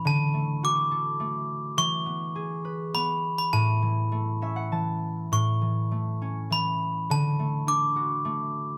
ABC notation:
X:1
M:3/4
L:1/16
Q:1/4=103
K:A
V:1 name="Glockenspiel"
a4 d'6 z2 | c'8 b3 b | a8 z4 | c'8 b4 |
a4 d'6 z2 |]
V:2 name="Harp"
z12 | z12 | z6 e f a4 | z12 |
z12 |]
V:3 name="Harp"
D,2 A,2 F2 A2 A,4 | E,2 B,2 G2 B2 B,4 | A,,2 E,2 A,2 C2 E,4 | A,,2 E,2 A,2 C2 E,4 |
D,2 A,2 D2 F2 A,4 |]